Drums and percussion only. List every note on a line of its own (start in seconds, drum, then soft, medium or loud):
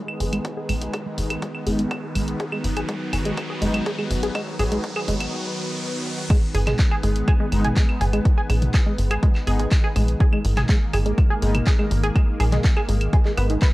0.08 claves medium
0.20 open hi-hat loud
0.33 closed hi-hat soft
0.33 claves soft
0.45 kick loud
0.45 closed hi-hat soft
0.45 mid tom medium
0.69 open hi-hat loud
0.69 claves medium
0.82 closed hi-hat soft
0.82 mid tom medium
0.94 kick loud
0.94 closed hi-hat soft
0.94 mid tom medium
0.94 claves medium
1.18 open hi-hat loud
1.18 mid tom medium
1.30 closed hi-hat soft
1.30 claves medium
1.42 kick loud
1.42 closed hi-hat soft
1.42 mid tom medium
1.55 claves soft
1.67 open hi-hat loud
1.79 closed hi-hat soft
1.91 kick loud
1.91 closed hi-hat soft
1.91 mid tom medium
1.91 claves medium
2.15 open hi-hat loud
2.15 claves soft
2.28 closed hi-hat soft
2.40 kick loud
2.40 closed hi-hat soft
2.40 mid tom medium
2.52 claves medium
2.64 open hi-hat loud
2.64 mid tom medium
2.77 closed hi-hat soft
2.77 mid tom medium
2.77 claves soft
2.89 kick loud
2.89 closed hi-hat soft
2.89 mid tom medium
3.13 open hi-hat loud
3.13 mid tom medium
3.13 claves medium
3.25 closed hi-hat soft
3.37 kick loud
3.37 closed hi-hat soft
3.37 mid tom medium
3.37 claves medium
3.62 open hi-hat loud
3.62 mid tom medium
3.74 closed hi-hat soft
3.74 mid tom medium
3.74 claves medium
3.86 kick loud
3.86 closed hi-hat soft
3.86 mid tom medium
3.99 claves medium
4.11 open hi-hat loud
4.11 mid tom medium
4.23 closed hi-hat soft
4.35 kick loud
4.35 closed hi-hat soft
4.35 mid tom medium
4.35 claves medium
4.47 mid tom medium
4.59 open hi-hat loud
4.59 mid tom medium
4.59 claves medium
4.72 closed hi-hat soft
4.72 mid tom medium
4.84 kick loud
4.84 closed hi-hat soft
4.84 mid tom loud
4.96 mid tom medium
4.96 claves medium
5.08 open hi-hat loud
5.08 mid tom loud
5.20 closed hi-hat soft
5.20 mid tom medium
5.20 claves medium
6.06 high tom medium
6.18 mid tom medium
6.30 kick loud
6.30 closed hi-hat soft
6.30 crash loud
6.30 claves medium
6.55 open hi-hat loud
6.67 clap soft
6.67 closed hi-hat soft
6.67 mid tom medium
6.67 claves medium
6.79 kick loud
6.79 clap loud
6.79 closed hi-hat soft
6.91 claves medium
7.03 open hi-hat loud
7.16 closed hi-hat soft
7.28 kick loud
7.28 closed hi-hat soft
7.28 claves medium
7.52 open hi-hat loud
7.52 claves soft
7.64 closed hi-hat soft
7.64 mid tom medium
7.76 kick loud
7.76 clap loud
7.76 closed hi-hat soft
7.89 claves medium
8.01 open hi-hat loud
8.13 closed hi-hat soft
8.13 claves soft
8.25 kick loud
8.25 closed hi-hat soft
8.50 open hi-hat loud
8.50 claves medium
8.62 closed hi-hat soft
8.62 mid tom medium
8.74 kick loud
8.74 clap loud
8.74 closed hi-hat soft
8.74 claves medium
8.98 open hi-hat loud
9.11 closed hi-hat soft
9.11 claves medium
9.23 kick loud
9.23 closed hi-hat soft
9.35 clap soft
9.35 claves soft
9.47 open hi-hat loud
9.60 closed hi-hat soft
9.72 kick loud
9.72 clap loud
9.72 closed hi-hat soft
9.72 claves medium
9.96 open hi-hat loud
9.96 claves medium
10.08 closed hi-hat soft
10.20 kick loud
10.20 closed hi-hat soft
10.33 claves medium
10.45 open hi-hat loud
10.57 clap soft
10.57 closed hi-hat soft
10.57 mid tom medium
10.57 claves medium
10.69 kick loud
10.69 clap loud
10.69 closed hi-hat soft
10.94 open hi-hat loud
10.94 claves medium
11.06 closed hi-hat soft
11.18 kick loud
11.18 closed hi-hat soft
11.18 claves medium
11.42 open hi-hat loud
11.55 closed hi-hat soft
11.55 mid tom medium
11.55 claves medium
11.67 kick loud
11.67 clap loud
11.67 closed hi-hat soft
11.79 claves medium
11.91 open hi-hat loud
12.04 closed hi-hat soft
12.15 kick loud
12.15 closed hi-hat soft
12.15 claves medium
12.40 open hi-hat loud
12.40 claves medium
12.52 clap soft
12.52 closed hi-hat soft
12.52 mid tom medium
12.64 kick loud
12.64 clap loud
12.64 closed hi-hat soft
12.77 claves medium
12.89 open hi-hat loud
13.01 closed hi-hat soft
13.01 claves medium
13.13 kick loud
13.13 closed hi-hat soft
13.25 clap soft
13.37 open hi-hat loud
13.37 claves medium
13.50 closed hi-hat soft
13.62 kick loud
13.62 clap loud
13.62 closed hi-hat soft
13.62 claves medium